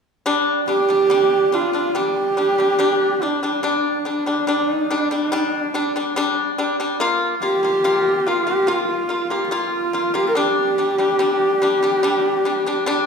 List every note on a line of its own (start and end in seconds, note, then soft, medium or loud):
0.26 0.60 G3 loud
0.26 0.60 D4 loud
0.68 0.85 G3 medium
0.68 0.85 D4 medium
0.68 1.56 G4 loud
0.89 1.06 G3 medium
0.89 1.06 D4 medium
1.10 1.44 G3 medium
1.10 1.44 D4 medium
1.52 1.69 G3 medium
1.52 1.70 D4 medium
1.52 1.98 F4 medium
1.73 1.90 G3 medium
1.73 1.91 D4 medium
1.95 2.29 G3 medium
1.95 2.29 D4 medium
1.95 3.26 G4 medium
2.37 2.54 G3 medium
2.37 2.54 D4 medium
2.58 2.75 G3 medium
2.58 2.76 D4 medium
2.79 3.13 G3 medium
2.79 3.13 D4 loud
3.22 3.38 G3 medium
3.22 3.39 D4 medium
3.22 3.65 D4 medium
3.43 3.60 G3 medium
3.43 3.60 D4 medium
3.63 3.97 G3 medium
3.63 3.97 D4 loud
3.68 4.70 D4 medium
4.05 4.22 G3 medium
4.05 4.23 D4 medium
4.26 4.43 G3 medium
4.26 4.44 D4 medium
4.47 4.81 G3 medium
4.47 4.82 D4 medium
4.70 4.98 D#4 medium
4.91 5.07 G3 medium
4.91 5.07 D4 medium
4.98 5.28 D4 medium
5.11 5.28 G3 medium
5.11 5.28 D4 medium
5.28 5.66 G3 loud
5.28 5.55 D#4 medium
5.33 5.66 D4 loud
5.55 6.56 D4 medium
5.74 5.91 G3 medium
5.74 5.91 D4 medium
5.96 6.12 G3 medium
5.96 6.13 D4 medium
6.16 6.50 G3 loud
6.16 6.50 D4 loud
6.58 6.75 G3 medium
6.58 6.75 D4 medium
6.80 6.96 G3 medium
6.80 6.97 D4 medium
7.00 7.34 A#3 loud
7.00 7.34 F4 loud
7.42 7.59 A#3 medium
7.42 7.59 F4 medium
7.42 8.28 G4 loud
7.63 7.80 A#3 medium
7.63 7.81 F4 medium
7.84 8.18 A#3 medium
7.84 8.18 F4 loud
8.27 8.43 A#3 medium
8.27 8.48 F4 medium
8.27 8.44 F4 medium
8.46 8.64 A#3 medium
8.46 8.64 F4 medium
8.46 8.69 G4 loud
8.67 9.01 A#3 medium
8.67 8.88 F4 medium
8.67 9.02 F4 medium
8.88 9.33 F4 medium
9.09 9.26 A#3 medium
9.09 9.27 F4 medium
9.30 9.48 A#3 medium
9.30 9.48 F4 medium
9.30 9.45 G4 medium
9.46 9.54 G4 medium
9.51 9.85 A#3 medium
9.51 9.86 F4 loud
9.51 10.16 F4 medium
9.93 10.10 A#3 medium
9.93 10.11 F4 medium
10.14 10.31 A#3 medium
10.14 10.32 F4 medium
10.14 10.28 G4 medium
10.29 10.36 A#4 medium
10.35 10.69 G3 medium
10.35 10.70 D4 loud
10.35 13.06 G4 medium
10.78 10.95 G3 medium
10.78 10.95 D4 medium
10.98 11.15 G3 medium
10.98 11.16 D4 medium
11.19 11.53 G3 medium
11.19 11.54 D4 medium
11.62 11.78 G3 medium
11.62 11.79 D4 medium
11.83 11.99 G3 medium
11.83 12.00 D4 medium
12.03 12.37 G3 medium
12.03 12.37 D4 loud
12.45 12.62 G3 medium
12.45 12.63 D4 medium
12.66 12.83 G3 medium
12.66 12.84 D4 medium
12.86 13.06 G3 loud
12.86 13.06 D4 loud